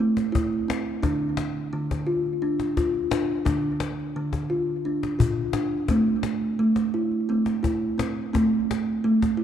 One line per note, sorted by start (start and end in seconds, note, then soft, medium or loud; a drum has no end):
0.00 0.99 A3 medium
0.00 0.33 C4 medium
0.17 cajon slap soft
0.32 0.67 E4 medium
0.32 cajon bass medium
0.32 cajon slap soft
0.53 cajon slap soft
0.68 1.03 C4 medium
0.68 cajon slap medium
1.02 1.68 D3 medium
1.02 1.72 D4 medium
1.02 cajon bass soft
1.02 cajon slap soft
1.37 cajon slap soft
1.73 2.38 D3 medium
1.73 cajon slap soft
1.91 cajon bass soft
1.91 cajon slap soft
2.07 2.41 F4 medium
2.26 cajon slap soft
2.42 3.10 D4 medium
2.60 cajon slap soft
2.77 3.11 F4 medium
2.77 cajon bass soft
2.77 cajon slap soft
2.95 cajon slap soft
3.11 3.44 D4 medium
3.11 cajon slap medium
3.45 4.11 D3 medium
3.45 4.15 D4 medium
3.45 cajon bass soft
3.45 cajon slap soft
3.80 cajon slap soft
4.00 cajon slap soft
4.16 4.81 D3 medium
4.33 cajon bass soft
4.33 cajon slap soft
4.50 4.85 F4 medium
4.85 5.20 D4 medium
5.03 cajon slap soft
5.19 5.54 F4 medium
5.19 cajon bass soft
5.37 cajon slap soft
5.53 5.89 D4 medium
5.53 cajon slap soft
5.88 6.56 A3 medium
5.88 6.59 C4 medium
5.88 cajon bass soft
5.88 cajon slap soft
6.23 cajon slap soft
6.59 7.25 A3 medium
6.59 cajon slap soft
6.76 cajon slap soft
6.94 7.29 E4 medium
7.11 cajon slap soft
7.29 8.30 A3 medium
7.29 7.64 C4 medium
7.46 cajon slap soft
7.63 7.98 E4 medium
7.63 cajon bass soft
7.63 cajon slap soft
7.82 cajon slap soft
7.98 8.32 C4 medium
7.98 cajon slap soft
8.33 9.00 A3 medium
8.33 9.03 C4 medium
8.33 cajon bass soft
8.33 cajon slap soft
8.71 cajon slap soft
9.04 9.44 A3 medium
9.04 cajon slap soft
9.22 cajon bass soft
9.22 cajon slap soft
9.37 9.44 E4 medium